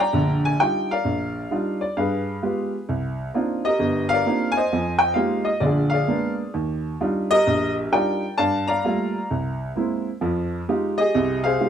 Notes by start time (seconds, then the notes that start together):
0.00 D5 G5 A#5
0.13 A#1 D3
0.45 G#5
0.60 G3 D4 D#4 F4 G5
0.91 A#4 D5 F5
1.05 A#1
1.51 G3 D4 D#4 F4
1.81 D5
1.97 G2 G#4 B4 F5
2.43 G#3 B3 F4 G4
2.89 C2
3.34 A#3 C4 D4 D#4 F4
3.65 G4 A#4 D#5
3.79 G1
4.09 F5
4.13 A#4 D5
4.26 A#3 C4 D4 D#4 F4
4.52 G#5
4.57 C5 D#5
4.72 F2 F3
4.99 G5
5.14 G#3 A#3 D#4 F4 G4 F5
5.45 D#5
5.60 A#1 D3 F4 D5
5.65 G#4
5.90 D5 F5
5.94 G#4
6.08 G#3 A#3 B3 D4
6.54 D#2
7.00 G3 D4 D#4 F4
7.31 G4 A#4 D#5
7.47 A#1
7.92 G3 D4 D#4 F4 A#4 D5 G5
8.38 G2 D5 F5 A5
8.67 D5 F5 A#5
8.84 G3 A3 A#3 F4
9.31 C2
9.76 G#3 A#3 C4 E4
10.21 F2 F3
10.68 G#3 D#4 F4 G4
10.98 G4 G#4 D#5
11.15 C2 C3
11.44 G#4 C5 F5
11.60 G#3 D#4 F4 G4